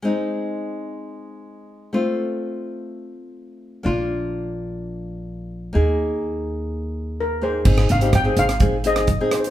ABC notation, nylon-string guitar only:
X:1
M:4/4
L:1/16
Q:1/4=126
K:Ab
V:1 name="Nylon-string guitar"
[A,CE]16 | [=A,CF]16 | [B,=DF]16 | [B,EA]12- [B,EA]2 [B,EA]2 |
[CEA]2 z [CEG] z [CEA]2 z [CEA] z [CEA]2 z [CEA]2 z |]